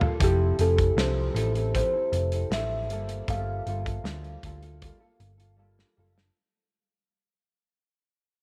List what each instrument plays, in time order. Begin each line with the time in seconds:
0.01 nylon-string guitar A#3 F4 A4, floor tom
0.20 picked electric bass F1, nylon-string guitar F3 C4 E4 A4, kalimba G4, kick, closed hi-hat
0.58 picked electric bass F1, nylon-string guitar F3 C4 E4 A4, kalimba A4, closed hi-hat
0.77 nylon-string guitar C4 E4 A4, kick, closed hi-hat
0.97 picked electric bass C2, nylon-string guitar F3 C4 E4 A4, kalimba C5, snare, closed hi-hat
1.34 picked electric bass A1, nylon-string guitar F3 C4 E4 A4, closed hi-hat
1.55 nylon-string guitar C4 E4 A4, closed hi-hat
1.74 nylon-string guitar F3 C4 E4 A4, kalimba C5, kick, closed hi-hat
1.94 nylon-string guitar C4 E4 A4
2.12 picked electric bass F1, closed hi-hat
2.32 nylon-string guitar E4 A4, closed hi-hat
2.36 nylon-string guitar C4
2.51 picked electric bass A1, nylon-string guitar F3 C4 E4 A4, kalimba E5, snare, closed hi-hat
2.89 picked electric bass G1, nylon-string guitar G3 A#3 F4 A4, closed hi-hat
3.09 closed hi-hat
3.28 picked electric bass G1, nylon-string guitar G3 A#3 F4 A4, kalimba F5, kick, closed hi-hat
3.66 picked electric bass G1, nylon-string guitar G3 A#3 F4 A4, closed hi-hat
3.85 nylon-string guitar A#3 F4 A4, kick, closed hi-hat
4.04 picked electric bass D2, nylon-string guitar G3 A#3 F4 A4, snare, closed hi-hat
4.24 closed hi-hat
4.43 picked electric bass D2, nylon-string guitar G3 A#3 F4 A4, kick, closed hi-hat
4.63 nylon-string guitar A#3 F4 A4, closed hi-hat
4.82 nylon-string guitar G3 A#3 F4 A4, kick, closed hi-hat
5.00 nylon-string guitar A#3 F4 A4
5.20 picked electric bass G1, closed hi-hat
5.38 nylon-string guitar A#3 F4 A4, closed hi-hat
5.56 nylon-string guitar G3 A#3 F4 A4
5.79 snare
5.96 picked electric bass F#1, nylon-string guitar G3 A#3 F4 A4
6.16 nylon-string guitar A#3 F4 A4, snare